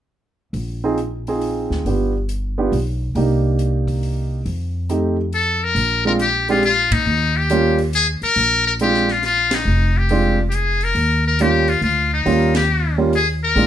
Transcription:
0.53 upright bass A#1, open hi-hat
0.84 grand piano C4 D#4 F4 G#4
0.98 closed hi-hat
1.27 grand piano C4 D#4 F4 G#4, open hi-hat
1.41 open hi-hat
1.70 upright bass D2, snare
1.85 upright bass G1, grand piano B3 D4 F4 G4, open hi-hat
2.29 closed hi-hat
2.58 grand piano B3 D4 F4 G4
2.72 upright bass B1, open hi-hat
3.15 upright bass C2, grand piano A#3 D4 D#4 G4, open hi-hat
3.59 closed hi-hat
3.88 kick, open hi-hat
4.03 open hi-hat
4.45 upright bass F2, open hi-hat
4.89 grand piano A3 C4 D#4 G4, closed hi-hat
5.33 muted trumpet A4, open hi-hat
5.64 muted trumpet A#4
5.75 upright bass A#1, open hi-hat
6.05 grand piano G#3 C4 D4 F4, muted trumpet A#4
6.19 muted trumpet G4, closed hi-hat
6.48 grand piano G#3 C4 D4 G4, muted trumpet F4, open hi-hat
6.63 muted trumpet F4, open hi-hat
6.91 upright bass A#2, muted trumpet D#4, kick, ride
7.06 upright bass D#2
7.37 muted trumpet G4
7.50 grand piano G3 A#3 C#4 F4, closed hi-hat
7.78 open hi-hat
7.93 muted trumpet G#4, closed hi-hat
8.22 muted trumpet A#4, muted upright bass stroke, open hi-hat
8.36 upright bass A#1, open hi-hat
8.67 muted trumpet A#4
8.79 grand piano G#3 C4 D4 F4, muted trumpet G4, closed hi-hat
8.94 snare
9.08 muted trumpet F4, snare
9.23 muted trumpet F4, snare, open hi-hat
9.51 muted trumpet D#4, snare, ride
9.65 upright bass F1
9.98 muted trumpet G4
10.09 grand piano G#3 C4 D4 F4, open hi-hat
10.50 muted trumpet G4, closed hi-hat
10.55 muted trumpet G#4
10.81 muted trumpet A#4, open hi-hat
10.95 upright bass D#2, open hi-hat
11.27 muted trumpet A#4
11.39 grand piano G3 A#3 C#4 F4, muted trumpet G4, closed hi-hat
11.68 muted trumpet F4, open hi-hat
11.81 upright bass D2, muted trumpet F4, open hi-hat
12.13 muted trumpet D#4
12.26 upright bass D#2, grand piano G3 A#3 C#4 F4, open hi-hat
12.55 muted trumpet G4, snare, ride
12.98 grand piano G3 A#3 C#4 F4
13.13 muted trumpet G#4, open hi-hat
13.44 muted trumpet A#4
13.56 upright bass A#1, grand piano G#3 C4 D4 F4, open hi-hat

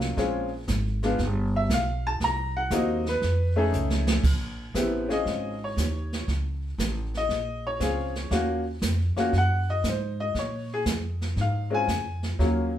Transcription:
Already playing: upright bass C2, upright piano F#3 A#3 C#4 F4
0.01 snare
0.17 upright bass A#1, upright piano G#3 C4 C#4 F4, brush sweep, kick, snare
0.68 upright bass G#1, kick, snare, hi-hat pedal
1.03 upright piano G#3 B3 D4 F4, snare
1.18 upright bass G1, brush sweep, kick, snare
1.56 upright piano E5
1.70 upright bass B1, kick, snare, hi-hat pedal
1.74 upright piano F5
2.07 upright piano A5
2.20 upright bass C2, brush sweep, kick, snare
2.24 upright piano A#5
2.57 upright piano F#5
2.70 upright bass D#2, upright piano A#3 C4 D#4 F#4 D#5, kick, snare, hi-hat pedal
3.06 upright piano B4, snare
3.22 upright bass F2, brush sweep, kick, snare
3.56 upright piano A3 C#4 D#4 G#4
3.73 upright bass C#2, hi-hat pedal
3.90 snare
4.07 snare
4.23 upright bass A#1, brush sweep, kick, snare, crash
4.74 upright bass A1, upright piano B3 C4 E4 G4, kick, snare, hi-hat pedal
5.09 upright piano C4 C#4 F4 G#4 D#5, snare
5.26 upright bass G#1, brush sweep, kick, snare
5.64 upright piano C#5
5.77 upright bass D#2, kick, snare, hi-hat pedal
6.13 snare
6.27 upright bass C#2, brush sweep, kick, snare
6.78 upright bass A1, kick, snare, hi-hat pedal
7.14 upright piano D#5, snare
7.29 upright bass A#1, brush sweep, kick, snare
7.67 upright piano C#5
7.80 upright bass C#2, upright piano C4 C#4 F4 G#4, kick, snare, hi-hat pedal
8.15 snare
8.31 upright bass D#2, upright piano A#3 C#4 F4 F#4, brush sweep, kick, snare
8.82 upright bass F2, kick, snare, hi-hat pedal
9.16 upright piano A#3 C#4 F4 F#4, muted upright bass stroke, snare
9.33 upright bass F#2, brush sweep, kick, snare
9.38 upright piano F#5
9.70 upright piano D#5
9.84 upright bass G#2, kick, snare, hi-hat pedal
9.89 upright piano C5
10.20 upright piano D#5
10.34 upright bass A#2, brush sweep, kick, snare
10.39 upright piano C#5
10.74 upright piano G#4
10.86 upright bass F2, kick, snare, hi-hat pedal
11.21 snare
11.36 upright bass G#2, brush sweep, kick, snare
11.41 upright piano F5
11.70 upright piano G#3 C4 C#4 F4
11.74 upright piano G#5
11.87 upright bass F2, kick, snare, hi-hat pedal
12.23 snare
12.39 upright bass D#2, upright piano F#3 A#3 C#4 F4, brush sweep, kick, snare

